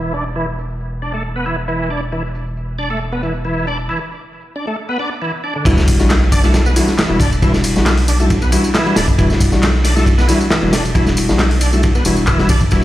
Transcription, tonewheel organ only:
Already playing: E3
0.14 D4
0.36 E3
1.02 D4
1.14 A3
1.36 B3
1.46 E3
1.68 E3
1.90 D4
2.12 E3
2.79 D4
2.90 A3
3.13 B3
3.23 E3
3.45 E3
3.67 D4
3.89 E3
4.56 D4
4.67 A3
4.89 B3
4.99 D4
5.22 E3
5.44 D4
5.55 D3
5.66 E3
6.32 D4
6.44 A3
6.66 B3
6.76 E3
6.98 E3
7.20 D4
7.43 E3
8.08 D4
8.20 A3
8.42 B3
8.52 E3
8.74 E3
8.96 D4
9.18 E3
9.84 D4
9.96 A3
10.18 B3
10.28 E3
10.50 E3
10.73 D4
10.95 E3
11.61 D4
11.73 A3
11.95 B3
12.06 E3
12.28 E3
12.50 D4
12.72 E3

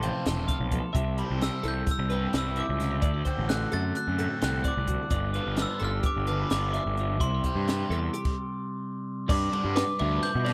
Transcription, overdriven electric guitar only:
0.03 F3 A3 C4 F4
0.27 F3 A3 C4 F4
1.19 E3 G3 C4 E4
1.43 E3 G3 C4 E4
2.11 E3 G3 C4 E4
2.34 E3 G3 C4 E4
3.27 D3 A3 C4 F#4
3.51 D3 A3 C4 F#4
4.19 D3 A3 C4 F#4
4.42 D3 A3 C4 F#4
5.35 D3 F3 B3 F4
5.57 D3 F3 B3 F4
6.27 D3 F3 B3 F4
6.51 D3 F3 B3 F4
7.45 C3 G3 C4 E4
7.68 C3 G3 C4 E4
9.53 D3 F3 B3 D4
9.99 D3 F3 B3 D4
10.46 D3 F3 B3 D4

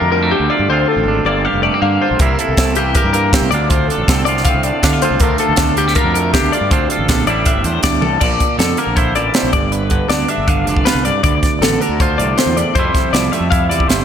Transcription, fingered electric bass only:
0.01 F2
0.40 D2
0.59 G2
0.69 D2
0.96 A1
1.06 G#1
1.25 G1
1.53 F1
1.82 G2
2.11 A#1
2.19 C2
2.49 C2
2.57 C2
3.04 G2
3.42 C2
3.51 D2
3.98 A1
4.08 C2
4.54 C2
4.83 D3
5.11 C2
5.20 D2
5.49 D2
5.57 D2
6.04 F2
6.41 D2
6.61 G2
6.71 D2
6.99 A1
7.09 A#1
7.26 A1
7.55 G1
7.64 E2
7.83 D2
8.01 C2
8.22 A#1
8.58 F2
8.87 A#1
9.15 A1
9.43 A#1
9.53 G1
10.09 D2
10.38 G1
10.67 F1
10.95 C2
11.23 D2
11.61 A1
11.89 D2
12.19 C2
12.46 E2
12.75 F2
13.13 C2
13.40 F2
13.70 E2
13.88 G1

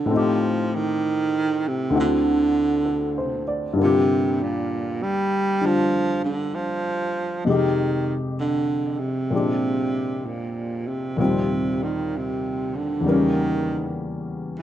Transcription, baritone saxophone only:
Already playing: D3
0.16 F3
0.76 D#3
1.68 C3
2.00 D3
3.83 C3
4.43 A#2
5.03 G3
5.66 F3
6.24 D3
6.55 F3
7.46 D#3
8.40 D3
8.99 C3
10.26 A#2
10.87 C3
11.17 B2 C3
11.83 D#3
12.17 C3
12.75 D3
13.07 D#3

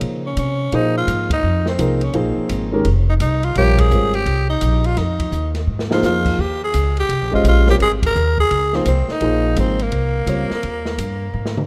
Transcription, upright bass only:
0.01 C#3
0.37 C3
0.72 A#2
1.07 G#2
1.43 F2
1.78 C2
2.14 A#1
2.37 muted upright bass stroke
2.50 G#1
2.85 F1
3.20 C2
3.56 A#1
3.91 G#1
4.26 C2
4.62 A#1
4.97 F2
5.32 D#2
5.67 G#2
6.02 F2
6.38 D#2
6.74 C#2
7.09 C2
7.21 A#1
7.33 G#1
7.44 A#1
7.80 G#1
8.15 D#2
8.51 C#2
8.86 C2
9.08 muted upright bass stroke
9.21 A#1
9.56 G#1
9.92 C2
10.27 C#2
10.50 muted upright bass stroke
10.63 D#2
10.98 G2
11.34 G#2

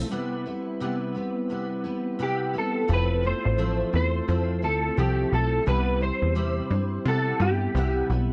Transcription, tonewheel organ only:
0.09 G3 C4 E4
0.14 B4
2.87 C4 E4 F4
2.92 G#4
2.99 A4
5.64 G3 C4 E4
5.69 G4

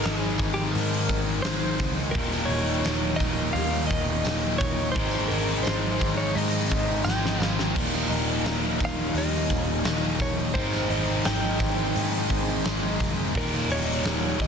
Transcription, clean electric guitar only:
0.04 G#4
0.54 G4
0.71 A#4
1.42 C5
2.11 A#4
2.45 C#5
3.16 D#5
3.53 F5
3.87 D#5
4.58 C#5
4.92 C5
5.28 A#4
5.63 C5
6.17 C#5
6.35 D#5
7.05 G5
8.85 F5
9.18 D#5
10.22 C#5
10.54 C5
11.26 G5
13.37 A#4
13.72 C#5
14.42 D#5

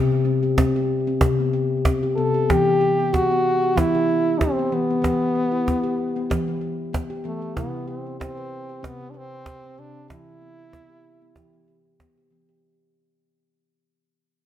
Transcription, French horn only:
2.16 A4
2.51 G4
3.14 F#4
3.78 E4
4.40 C4
4.74 B3
7.25 A3
7.56 B3
7.88 C4
8.20 C4
8.85 B3
9.10 D4
9.17 C4
9.79 D4
10.11 E4

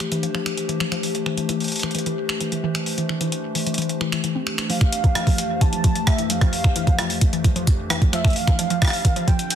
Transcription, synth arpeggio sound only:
0.12 E3
0.23 F3
0.34 F3
0.69 E3
0.80 F3
0.92 F3
1.26 E3
1.37 E3
1.49 E3
1.83 E3
1.95 E3
2.06 E3
2.41 E3
2.52 E3
2.63 E3
2.98 E3
3.09 E3
3.21 E3
3.55 E3
3.66 E3
3.78 E3
4.01 E3
4.12 E3
4.24 E3
4.35 C4
4.70 F3
5.04 E3
5.15 F3
5.27 F3
5.61 E3
5.73 F3
5.84 F3
6.18 E3
6.30 F3
6.41 F3
6.76 E3
6.87 F3
6.99 F3
7.33 E3
7.44 F3
7.56 F3
7.90 E3
8.02 F3
8.13 F3
8.47 E3
8.59 F3
8.70 F3
9.05 E3
9.16 F3
9.28 F3

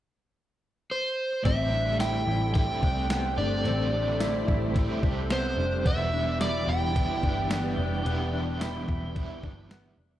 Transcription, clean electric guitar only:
1.45 C4
1.73 D4
2.00 E4
2.28 E4
2.83 D4
3.11 B3
3.38 D4
3.65 C4
3.93 D4
4.20 E4
4.48 E4
5.03 D4
5.30 B3
5.58 D4
5.85 B3
6.13 D4
6.40 E4
6.68 E4
7.23 D4
7.51 B3
7.78 D4
8.06 B3
8.33 D4
8.61 E4
8.88 E4
9.43 D4
9.71 B3
9.98 D4

